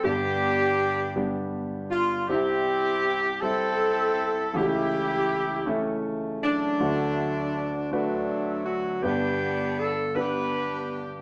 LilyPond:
<<
  \new Staff \with { instrumentName = "Saxophone section" } { \time 6/8 \key g \mixolydian \tempo 4. = 53 << { g'2 r8 f'8 | g'4. a'4. | g'2 r8 d'8~ | d'4. d'4 fis'8 |
g'4 a'8 b'4 r8 | } \\ { <b d'>2 r4 | <c' e'>4. <c' e'>4. | e'2 r8 <fis a>8~ | <fis a>4. <fis a>4. |
<b d'>4. <d' g'>4. | } >> }
  \new Staff \with { instrumentName = "Grand piano" } { \time 6/8 \key g \mixolydian <g b d' g'>4 r8 <g b d' g'>4 r8 | <g c' e' g'>4 r8 <g c' e' a'>4 r8 | <a cis' e' fis' g'>4 r8 <a cis' e' a'>4 r8 | <a d' fis' a'>4 r8 <a d' fis' b'>4 r8 |
<b d' g' b'>4 r8 <b d' g' b'>4 r8 | }
  \new Staff \with { instrumentName = "Grand piano" } { \clef bass \time 6/8 \key g \mixolydian <g,, g,>2. | <c, c>2. | <cis, e>2. | <d, d>2. |
<g,, g,>2. | }
>>